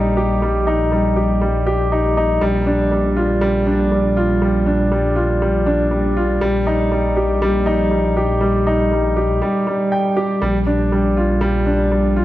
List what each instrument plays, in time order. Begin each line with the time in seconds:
Already playing: detuned saw bass A#1, grand piano G3 D#4 G4
0.17 grand piano G4
0.42 grand piano G3
0.67 grand piano D#4
0.92 grand piano G3
1.16 grand piano G4
1.41 grand piano G3
1.67 grand piano G4
1.92 grand piano D#4
2.17 grand piano D#4
2.41 detuned saw bass A#1, grand piano G3
2.66 grand piano D4
2.91 grand piano G3
3.17 grand piano F4
3.41 grand piano G3
3.67 grand piano D4
3.92 grand piano G3
4.17 grand piano F4
4.42 grand piano G3
4.66 grand piano D4
4.92 grand piano G3
5.16 grand piano F4
5.42 grand piano G3
5.66 grand piano D4
5.91 grand piano G3
6.17 grand piano F4
6.41 detuned saw bass A#1, grand piano G3
6.67 grand piano D#4
6.92 grand piano G3
7.17 grand piano G4
7.42 grand piano G3
7.66 grand piano D#4
7.91 grand piano G3
8.17 grand piano G4
8.41 grand piano G3
8.67 grand piano D#4
8.92 grand piano G3
9.17 grand piano G4
9.42 grand piano G3
9.67 grand piano G3
9.92 grand piano G5
10.17 grand piano G4
10.42 detuned saw bass A#1, grand piano G3
10.67 grand piano D4
10.92 grand piano G3
11.17 grand piano F4
11.41 grand piano G3
11.66 grand piano D4
11.92 grand piano G3
12.17 grand piano F4